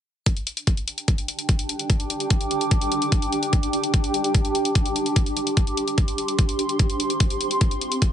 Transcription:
0.26 D4, kick, closed hi-hat
0.37 closed hi-hat
0.42 G5
0.47 closed hi-hat
0.57 closed hi-hat
0.67 G4, kick, closed hi-hat
0.77 closed hi-hat
0.88 closed hi-hat
0.98 closed hi-hat
1.08 kick, closed hi-hat
1.18 closed hi-hat
1.28 closed hi-hat
1.39 closed hi-hat
1.43 D6
1.49 kick, closed hi-hat
1.59 closed hi-hat
1.69 closed hi-hat
1.79 closed hi-hat
1.90 kick, closed hi-hat
2.00 closed hi-hat
2.10 closed hi-hat
2.20 closed hi-hat
2.30 kick, closed hi-hat
2.41 closed hi-hat
2.51 closed hi-hat
2.61 closed hi-hat
2.71 kick, closed hi-hat
2.81 closed hi-hat
2.92 closed hi-hat
3.02 closed hi-hat
3.12 kick, closed hi-hat
3.22 closed hi-hat
3.32 closed hi-hat
3.43 closed hi-hat
3.53 kick, closed hi-hat
3.63 closed hi-hat
3.73 closed hi-hat
3.84 closed hi-hat
3.94 kick, closed hi-hat
4.04 closed hi-hat
4.14 closed hi-hat
4.24 closed hi-hat
4.35 kick, closed hi-hat
4.45 closed hi-hat
4.55 closed hi-hat
4.65 closed hi-hat
4.73 C6, kick, closed hi-hat
4.86 closed hi-hat
4.96 closed hi-hat
5.06 closed hi-hat
5.16 kick, closed hi-hat
5.26 closed hi-hat
5.37 closed hi-hat
5.47 closed hi-hat
5.57 kick, closed hi-hat
5.67 closed hi-hat
5.77 closed hi-hat
5.88 closed hi-hat
5.98 kick, closed hi-hat
6.08 closed hi-hat
6.18 closed hi-hat
6.28 closed hi-hat
6.39 kick, closed hi-hat
6.49 closed hi-hat
6.59 closed hi-hat
6.69 closed hi-hat
6.79 C4, kick, closed hi-hat
6.90 closed hi-hat
7.00 closed hi-hat
7.10 closed hi-hat
7.17 F4, kick, closed hi-hat
7.30 closed hi-hat
7.41 closed hi-hat
7.51 F5, closed hi-hat
7.61 kick, closed hi-hat
7.71 closed hi-hat
7.81 closed hi-hat
7.92 closed hi-hat
8.02 kick, closed hi-hat

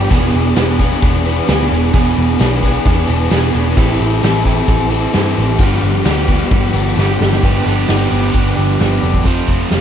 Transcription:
Already playing: F3 G3 B3 G4
0.10 E1 E2 B2 E3 B3 D4 G#4, kick, crash
0.33 E1 E3 B3 D4 G#4
0.56 E1 E3 B3 D4 G#4 B4, snare, crash
0.79 E3 B3 D4 G#4, kick
0.92 snare
1.01 E1 E3 B3 D4 G#4, kick, crash
1.25 E3 B3 D4 G#4 B4
1.47 D2 E2 B2 E3 B3 D4 G#4, snare, crash
1.70 E1 E3 B3 D4 G#4
1.93 E1 E2 B2 E3 B3 D4 G#4, kick, crash
2.16 E1 E3 B3 D4 G#4
2.38 B1 E3 B3 D4 G#4 B4, snare, crash
2.53 snare
2.61 E3 B3 D4 G#4, kick
2.67 E3
2.85 E2 E3 B3 D4 G#4, kick, crash
3.07 E1 E3 B3 D4 G#4 B4
3.30 E1 E2 B2 E3 B3 D4 G#4, snare, crash
3.54 E1 E3 B3 D4 G#4
3.76 A1 A2 E3 C4 E4 G4 A4, kick, crash
3.99 A1 C4 E4 A4
4.21 A1 E3 C4 E4 A4, snare, crash
4.36 snare
4.45 C4 E4 G4 A4, kick
4.67 A1 E3 C4 E4 A4, kick, crash
4.90 C4 E4 A4
5.13 G2 A2 E3 C4 E4 G4 A4, snare, crash
5.37 A1 C4 E4 G4 A4
5.58 G1 G2 D3 F3 G3 B3 F4 G4, kick, crash
5.81 G1 F3 G3 B3 G4
6.04 D2 F3 G3 B3 G4, snare, crash
6.18 snare
6.27 F3 G3 B3 F4 G4, kick
6.41 snare
6.50 G2 F3 G3 B3 G4, kick, crash
6.73 G1 F3 G3 B3 G4 A4
6.95 G1 G2 D3 F3 G3 B3 G4, snare
7.19 G1 F3 G3 B3 G4, snare
7.33 snare
7.41 G1 G2 D3 F3 G3 B3 D4 G4, kick, open hi-hat
7.64 G1 F3 B3 D4 G4 A4, open hi-hat
7.87 G1 F3 B3 D4 G4, snare, open hi-hat
8.10 G1 F3 B3 D4 G4, open hi-hat
8.32 G1 G2 D3 F3 B3 D4 G4, kick, open hi-hat
8.55 G1 F3 B3 D4 G4, open hi-hat
8.78 G1 F3 B3 D4 F4 G4, snare, open hi-hat
9.01 F1 F3 B3 D4 G4 A4, open hi-hat
9.14 kick
9.23 F1 F2 C3 F3 A3 C4 F4, kick, closed hi-hat
9.48 F1, kick, closed hi-hat
9.71 F1, snare, closed hi-hat

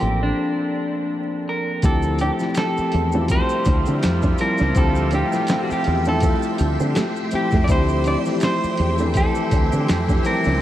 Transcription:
Already playing: D4 G4 A4
0.00 A1 F3 A#3 C4 D4 A4, cross-stick
0.23 D4
1.49 A#4
1.82 D2 F3 A3 C4 E4 G4 A4 E5 G5 C6, kick, closed hi-hat, maracas
2.03 maracas
2.19 D4 G4, closed hi-hat, maracas
2.39 F3 A3 C4 E4 G4, snare, maracas
2.54 finger snap, snare, closed hi-hat, maracas
2.58 C4 A4, finger snap
2.77 muted fretless electric bass stroke, maracas
2.92 E2, muted nylon-string guitar stroke, closed hi-hat
3.12 A3 C4 D4 E4 F4 F#4, maracas
3.22 G4
3.28 C3 G3 F4 C5, muted nylon-string guitar stroke, kick, closed hi-hat, maracas
3.49 maracas
3.65 D2 D4, kick, closed hi-hat, maracas
3.86 D3 C4, maracas
4.03 F2, finger snap, snare, closed hi-hat, maracas
4.22 D4, kick, maracas
4.38 F3 G3 C4 E4 A#4 A5, muted nylon-string guitar stroke, closed hi-hat, maracas
4.58 C#2 D4, snare, maracas
4.75 D2 F3 A3 C4 E4 G4 A4, kick, closed hi-hat, maracas
4.95 maracas
5.11 D4 G4, closed hi-hat, maracas
5.32 F3 A3 C4 E4 A4, snare, maracas
5.47 C4, finger snap, snare, closed hi-hat, maracas
5.50 finger snap
5.64 F#4
5.71 G4, muted fretless electric bass stroke, maracas
5.84 E2, muted nylon-string guitar stroke, closed hi-hat
6.05 A3 C4 D4 E4 F4 A4, maracas
6.20 C4, kick, closed hi-hat, maracas
6.42 maracas
6.58 D2, muted nylon-string guitar stroke, closed hi-hat, maracas
6.80 D3 C4, maracas
6.95 A3, finger snap, snare, closed hi-hat, maracas
7.16 maracas
7.31 F3 A3 C4 E4 G4, muted fretless electric bass stroke, muted nylon-string guitar stroke, closed hi-hat, maracas
7.35 G4
7.51 F2 A3, kick, snare, maracas
7.64 D5, closed hi-hat
7.68 D2 F3 A3 C4 E4 G4 C5, kick, maracas
7.89 maracas
8.04 D4 D5, closed hi-hat, maracas
8.25 E3 A3 C4 E4 A4, snare, maracas
8.32 F3
8.40 finger snap, snare, closed hi-hat, maracas
8.43 C4 C5, finger snap
8.64 muted fretless electric bass stroke, maracas
8.77 E2, muted nylon-string guitar stroke, closed hi-hat
8.98 E3 A3 C4 D4 E4 A4, maracas
9.05 E3
9.14 E3 C4 G4 A4, muted nylon-string guitar stroke, kick, closed hi-hat, maracas
9.35 maracas
9.51 D2 D4, kick, closed hi-hat, maracas
9.72 D3 C4, maracas
9.88 F2, finger snap, snare, closed hi-hat, maracas
10.08 D4, kick, maracas
10.24 F3 G3 C4 E4 A#4 A5, muted nylon-string guitar stroke, closed hi-hat, maracas
10.44 C#2 D4, snare, maracas

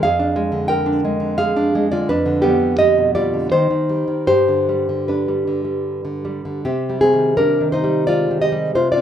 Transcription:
0.03 F2 G#4 F5
0.19 D4
0.36 G#3
0.52 D3
0.68 A#4 G5
0.86 D4
1.05 G#3
1.20 D3
1.38 G#4 F5
1.56 D4
1.75 G#3
1.91 D3 F4 D5
2.09 F2 D4 B4
2.26 D3
2.42 G3 B3 G4
2.60 D3
2.79 G4 D#5
2.98 B2
3.15 G3 F4 D5
3.34 D3
3.52 D#3 D#4 C5
3.70 D#3
3.89 G3
4.08 D#3
4.27 G2 G4 C5
4.48 D3
4.69 G3
4.89 D3
5.08 D4 B4
5.28 G3
5.47 D3
5.65 G3
6.05 D3
6.25 G3
6.45 D3
6.65 C3 C4 G4
6.90 G3
7.01 C4 G#4
7.13 D#3
7.37 G3 D4 A#4
7.61 D#3
7.72 D#4 C5
7.84 G3
8.07 G#3 F4 D5
8.31 D#3
8.42 G4 D#5
8.52 G3
8.75 C3 F4 C5
8.92 F4 D5
8.97 C4

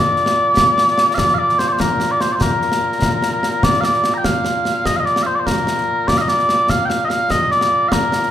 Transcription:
Already playing: A#2 D5
0.16 snare
0.26 snare
0.57 concert bass drum, snare
0.78 snare
0.88 snare
0.98 snare
1.15 F5, concert bass drum, snare
1.19 D5
1.28 snare
1.34 F5
1.39 D5
1.49 snare
1.59 C5, snare
1.68 D5
1.72 C5
1.80 A#4, concert bass drum, snare
2.00 snare
2.11 D5
2.21 C5, snare
2.32 C5 D5
2.41 A#4, concert bass drum, snare
2.62 snare
2.72 snare
2.92 snare
3.02 concert bass drum, snare
3.22 snare
3.43 snare
3.63 D5, concert bass drum, snare
3.73 snare
3.81 D5 F5, snare
3.94 snare
4.04 snare
4.14 G5 A#5
4.24 F5, concert bass drum, snare
4.45 snare
4.65 snare
4.86 D#5, concert bass drum, snare
4.96 D#5 F5
5.05 D5, snare
5.16 snare
5.23 C5 F5
5.35 D5
5.39 C5
5.47 A#4, concert bass drum, snare
5.67 snare
5.78 snare
6.08 D5, concert bass drum, snare
6.18 D#5 F5, snare
6.28 D5, snare
6.39 snare
6.49 snare
6.69 F5, concert bass drum, snare
6.85 F5 G5
6.90 snare
7.05 D#5
7.09 F5, snare
7.30 D#5, concert bass drum, snare
7.51 D5, snare
7.61 snare
7.88 F5, concert bass drum, snare
7.92 A#4
8.12 snare
8.23 snare

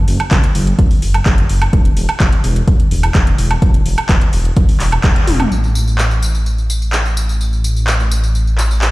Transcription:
0.08 F#1, open hi-hat
0.20 closed hi-hat, high woodblock
0.31 F#1, kick, clap, closed hi-hat
0.44 closed hi-hat
0.55 F#1, open hi-hat
0.67 closed hi-hat
0.79 F#1, kick, closed hi-hat
0.91 open hi-hat
1.02 F#1, open hi-hat
1.14 closed hi-hat, high woodblock
1.26 F#1, kick, clap, closed hi-hat
1.38 closed hi-hat
1.49 F#1, open hi-hat
1.62 closed hi-hat, high woodblock
1.73 E1, kick, closed hi-hat
1.85 closed hi-hat
1.97 E1, open hi-hat
2.09 closed hi-hat, high woodblock
2.20 E1, kick, clap, closed hi-hat
2.33 closed hi-hat
2.44 E1, open hi-hat
2.56 closed hi-hat
2.68 E1, kick, closed hi-hat
2.80 closed hi-hat
2.91 E1, open hi-hat
3.03 closed hi-hat, high woodblock
3.15 E1, kick, clap, closed hi-hat
3.27 closed hi-hat
3.38 E1, open hi-hat
3.51 closed hi-hat, high woodblock
3.62 E1, kick, closed hi-hat
3.74 closed hi-hat
3.86 E1, open hi-hat
3.98 closed hi-hat, high woodblock
4.09 E1, kick, clap, closed hi-hat
4.21 closed hi-hat
4.33 E1, open hi-hat
4.45 closed hi-hat
4.57 E1, kick, closed hi-hat
4.69 open hi-hat
4.80 E1, clap, open hi-hat
4.92 high woodblock
5.04 E1, kick, clap, closed hi-hat
5.16 closed hi-hat
5.27 E1, open hi-hat, high tom
5.40 closed hi-hat, mid tom, high woodblock
5.51 A1, tambourine
5.64 tambourine
5.75 tambourine
5.88 tambourine
5.98 clap, tambourine
6.11 tambourine
6.22 tambourine
6.35 tambourine
6.46 tambourine
6.58 tambourine
6.70 tambourine
6.82 tambourine
6.93 clap, tambourine
7.06 tambourine
7.17 tambourine
7.29 tambourine
7.41 tambourine
7.53 tambourine
7.64 tambourine
7.76 tambourine
7.87 clap, tambourine
8.00 tambourine
8.11 tambourine
8.24 tambourine
8.35 tambourine
8.47 tambourine
8.58 clap, tambourine
8.71 tambourine
8.82 clap, tambourine

